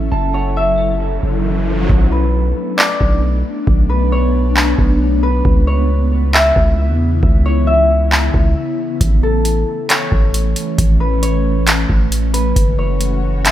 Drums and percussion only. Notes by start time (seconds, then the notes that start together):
1.89 kick
2.79 clap
3.01 kick
3.67 kick
4.57 clap
4.79 kick
5.45 kick
6.34 clap
6.56 kick
7.23 kick
8.12 clap
8.34 kick
9.01 kick, closed hi-hat
9.45 closed hi-hat
9.90 clap, closed hi-hat
10.12 kick
10.34 closed hi-hat
10.56 closed hi-hat
10.78 kick, closed hi-hat
11.23 closed hi-hat
11.67 clap, closed hi-hat
11.90 kick
12.12 closed hi-hat
12.34 closed hi-hat
12.56 kick, closed hi-hat
13.01 closed hi-hat
13.45 clap, closed hi-hat